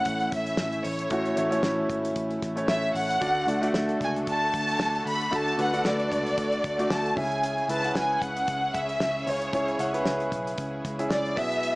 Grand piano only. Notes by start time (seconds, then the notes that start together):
Already playing: A2 A3 C#4 E4 C#5
1.11 A2 A3 C#4 E4 F#4
1.36 A3 C#4 E4 C#5
1.50 A3 C#4 E4 C#5
2.56 A3 C#4 E4 C#5
3.20 D3 A3 D4 F#4 D5
3.47 A3 D4 F#4 D5
3.61 A3 D4 F#4 D5
5.31 D3 A3 D4 F#4 A4
5.58 A3 D4 F#4 B4
5.72 A3 D4 F#4 D5
6.78 A3 D4 F#4 D5
7.16 C#3 C#4 E4 G#4 E5
7.68 C#4 E4 G#4 B4
7.83 C#4 E4 G#4 F#5
9.27 C#3
9.53 C#4 E4 G#4 C#5
9.79 C#4 E4 G#4 F#5
9.93 C#4 E4 G#4 B4
10.99 C#4 E4 G#4 E5
11.36 B2 B3 E4 G#4 E5